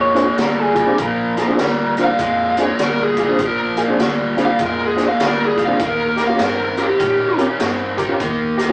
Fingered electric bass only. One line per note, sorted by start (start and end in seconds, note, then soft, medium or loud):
0.00 0.30 F2 medium
0.39 0.90 D2 medium
0.99 1.51 A#1 loud
1.59 2.11 D2 medium
2.19 2.71 F2 medium
2.79 3.31 D2 medium
3.39 3.91 A#1 medium
3.99 4.51 D2 medium
4.60 5.12 F2 medium
5.20 5.72 D2 medium
5.80 6.32 D#2 medium
6.40 6.92 G2 medium
7.00 7.52 A#2 medium
7.61 8.13 G2 medium
8.20 8.72 D#2 loud